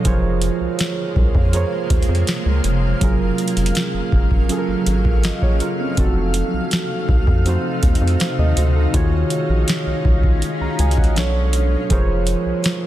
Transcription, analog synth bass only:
0.05 0.50 F1 loud
0.61 0.68 C2 soft
1.16 1.31 C2 medium
1.35 1.65 F2 loud
1.90 2.05 D#2 medium
2.09 2.24 F2 loud
2.46 2.61 C#2 medium
2.64 2.94 F1 loud
3.01 3.31 F#1 loud
3.57 3.72 F1 medium
3.94 4.01 F#1 medium
4.12 4.42 F#1 medium
4.68 4.76 G#1 soft
4.87 5.32 G#1 medium
5.98 6.42 F1 loud
6.53 6.61 C2 soft
7.09 7.24 C2 loud
7.27 7.57 F2 loud
7.83 7.98 D#2 medium
8.01 8.16 F2 loud
8.39 8.53 D#2 loud
8.57 8.87 D2 loud
8.94 9.24 D#2 loud
9.49 9.64 A#1 medium
9.87 9.94 C2 medium
10.05 10.35 C2 medium
10.61 10.68 C#2 soft
10.79 11.09 C#2 medium
11.16 11.76 B1 loud
11.90 12.35 F1 loud
12.46 12.53 C2 soft

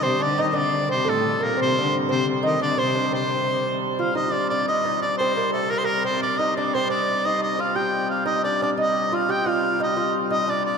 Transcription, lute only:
0.03 0.21 C4 medium
0.20 0.38 D4 medium
0.38 0.53 D#4 medium
0.53 0.90 D4 medium
0.89 1.04 C4 medium
1.05 1.40 A3 medium
1.40 1.57 A#3 medium
1.57 1.80 C4 medium
1.78 1.95 D4 medium
2.09 2.25 C4 medium
2.43 2.61 D#4 medium
2.61 2.79 D4 medium
2.78 2.96 C4 medium
2.95 3.13 D4 medium
3.12 3.77 C4 medium
3.99 4.15 F4 medium
4.15 4.31 D#4 medium
4.33 4.49 D4 medium
4.51 4.68 D4 medium
4.68 4.84 D#4 medium
4.85 5.02 D#4 medium
5.02 5.20 D4 medium
5.20 5.36 C4 medium
5.37 5.53 A#3 medium
5.54 5.70 A3 medium
5.70 5.83 A#3 medium
5.84 6.04 A#3 medium
6.04 6.22 C4 medium
6.23 6.39 D4 medium
6.39 6.56 D#4 medium
6.57 6.73 D4 medium
6.75 6.91 C4 medium
6.90 7.25 D4 medium
7.25 7.58 D#4 medium
7.59 7.76 F4 medium
7.76 8.28 G4 medium
8.26 8.44 D#4 medium
8.44 8.60 D4 medium
8.62 8.77 D4 medium
8.77 9.09 D#4 medium
9.12 9.30 F4 medium
9.29 9.47 G4 medium
9.46 9.79 F4 medium
9.80 9.96 D#4 medium
9.96 10.13 F4 medium
10.30 10.47 D#4 medium
10.48 10.78 D4 medium

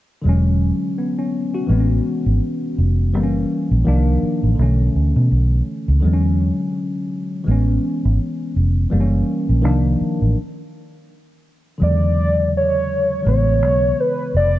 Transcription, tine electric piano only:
0.22 1.64 D3 soft
0.22 1.66 F#3 medium
0.27 1.67 G#3 medium
0.27 0.97 C#4 medium
0.98 1.17 B3 medium
1.19 1.52 C#4 medium
1.54 1.88 F#4 medium
1.67 3.09 E3 medium
1.67 3.11 G#3 soft
1.72 3.12 B3 medium
1.72 1.78 C4 medium
1.80 3.16 C#4 medium
3.13 3.86 E3 medium
3.13 3.86 G3 medium
3.13 3.85 A#3 medium
3.13 3.22 C4 medium
3.23 3.91 C#4 medium
3.84 4.57 D#3 medium
3.84 4.58 F3 medium
3.84 4.58 A#3 medium
3.84 4.59 D4 medium
4.55 5.98 D3 medium
4.55 5.99 E3 soft
4.60 6.01 A3 medium
4.60 6.02 C#4 medium
6.00 7.43 D3 medium
6.00 7.44 F#3 medium
6.05 7.45 G#3 soft
6.05 6.12 C4 soft
6.13 7.50 C#4 medium
7.44 8.87 E3 medium
7.44 8.88 G#3 soft
7.48 8.89 B3 soft
7.48 8.91 C#4 medium
8.90 9.63 E3 medium
8.90 9.64 G3 medium
8.90 9.63 A#3 medium
8.90 9.00 C4 medium
9.00 9.68 C#4 medium
9.62 10.35 D#3 medium
9.62 10.36 F3 medium
9.62 10.36 A#3 medium
9.62 10.37 D4 medium
11.78 13.21 D3 medium
11.78 13.22 F#3 soft
11.83 13.24 C#3 medium
11.83 13.23 G#3 soft
13.22 14.59 E3 soft
13.22 14.59 G#3 soft
13.27 14.59 C#3 medium
13.27 14.59 B3 soft

